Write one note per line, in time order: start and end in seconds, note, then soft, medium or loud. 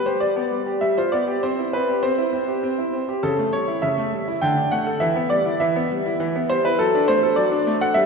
0.06 0.22 G4 medium
0.06 0.21 C5 medium
0.20 0.36 G3 medium
0.20 0.77 D5 medium
0.36 0.52 B3 medium
0.52 0.68 G3 medium
0.66 0.82 G4 medium
0.81 0.96 G3 medium
0.81 0.97 E5 medium
0.98 1.13 F4 medium
0.98 1.12 C5 medium
1.12 1.28 B3 medium
1.12 1.42 D5 medium
1.28 1.43 G4 medium
1.43 1.58 C4 medium
1.43 1.73 C5 medium
1.59 1.74 E4 medium
1.73 1.89 C4 medium
1.73 2.00 B4 medium
1.88 2.04 G4 medium
2.03 2.18 C4 medium
2.03 3.19 C5 medium
2.18 2.34 E4 medium
2.33 2.49 C4 medium
2.48 2.64 G4 medium
2.63 2.78 C4 medium
2.78 2.94 E4 medium
2.93 3.09 C4 medium
3.09 3.23 G4 medium
3.23 3.38 C#3 medium
3.23 3.53 A4 medium
3.39 3.54 A3 medium
3.53 3.69 G3 medium
3.53 3.80 C#5 loud
3.68 3.84 E4 medium
3.82 3.97 C#3 medium
3.82 4.38 E5 loud
3.98 4.13 A3 medium
4.12 4.28 G3 medium
4.28 4.42 E4 medium
4.41 4.57 D3 medium
4.41 4.71 G5 loud
4.57 4.73 D4 medium
4.71 4.88 A3 medium
4.71 5.01 F#5 medium
4.87 5.01 A4 medium
5.00 5.16 E3 medium
5.00 5.27 E5 loud
5.16 5.32 B3 medium
5.30 5.46 G3 medium
5.30 5.60 D5 loud
5.46 5.61 E4 medium
5.60 5.75 E3 medium
5.60 6.45 E5 loud
5.76 5.91 B3 medium
5.91 6.07 G3 medium
6.06 6.21 E4 medium
6.20 6.34 E3 medium
6.36 6.51 B3 medium
6.50 6.65 G3 medium
6.50 6.64 C5 loud
6.65 6.79 E4 medium
6.65 6.79 B4 loud
6.79 6.93 F#3 medium
6.79 7.08 A4 loud
6.95 7.09 D4 medium
7.08 7.24 A3 medium
7.08 7.34 C5 loud
7.23 7.38 A4 medium
7.36 7.51 F#3 medium
7.36 7.81 D5 loud
7.52 7.67 D4 medium
7.67 7.82 A3 medium
7.81 7.96 A4 medium
7.81 7.96 F#5 loud
7.94 8.06 G3 medium
7.94 8.06 E5 loud